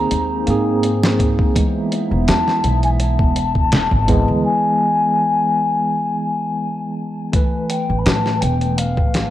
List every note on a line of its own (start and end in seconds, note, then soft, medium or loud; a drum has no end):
0.00 4.40 G#3 medium
0.00 0.47 A#3 medium
0.00 1.51 A#3 medium
0.00 0.48 C4 medium
0.00 1.51 D#4 medium
0.00 0.50 G#4 loud
0.00 1.51 C5 loud
0.00 0.83 A#5 loud
0.11 0.49 D#2 medium
0.11 closed hi-hat medium
0.47 1.35 G#2 medium
0.47 1.51 A#3 medium
0.47 1.52 C4 medium
0.47 1.53 G#4 medium
0.47 closed hi-hat medium
0.83 closed hi-hat medium
1.03 snare loud
1.19 kick medium
1.19 closed hi-hat medium
1.39 kick loud
1.55 4.04 E3 medium
1.55 4.05 G#3 medium
1.55 4.41 B3 medium
1.55 4.05 B3 medium
1.55 4.41 E4 medium
1.55 4.42 E5 medium
1.55 kick loud
1.55 closed hi-hat medium
1.92 closed hi-hat medium
2.11 2.26 E1 medium
2.28 2.60 E2 medium
2.28 2.79 A5 loud
2.28 snare loud
2.28 closed hi-hat medium
2.48 snare soft
2.64 3.16 B1 medium
2.64 closed hi-hat medium
2.83 2.90 G#5 loud
2.83 closed hi-hat soft
3.00 4.41 A5 loud
3.00 closed hi-hat medium
3.19 3.88 E1 medium
3.19 kick medium
3.36 closed hi-hat medium
3.55 kick medium
3.72 snare loud
3.72 closed hi-hat medium
3.91 4.23 G#1 medium
3.91 kick medium
4.08 4.40 E3 medium
4.08 4.41 G#3 loud
4.08 4.40 B3 medium
4.08 kick medium
4.08 closed hi-hat medium
4.28 4.43 D2 medium
4.45 6.93 G#5 loud
7.32 9.30 E3 medium
7.32 9.30 A3 medium
7.32 9.30 B3 medium
7.32 9.30 B4 medium
7.32 kick loud
7.32 closed hi-hat medium
7.70 8.00 G5 medium
7.70 closed hi-hat medium
7.90 8.04 A1 medium
7.99 8.07 B5 medium
8.05 8.38 A2 medium
8.05 8.42 A5 loud
8.05 snare loud
8.05 closed hi-hat medium
8.26 snare soft
8.41 8.94 E1 medium
8.41 8.79 G5 medium
8.41 closed hi-hat medium
8.61 closed hi-hat soft
8.77 9.30 F5 medium
8.77 closed hi-hat medium
8.97 9.30 A1 medium
8.97 kick medium
9.14 snare medium
9.14 closed hi-hat medium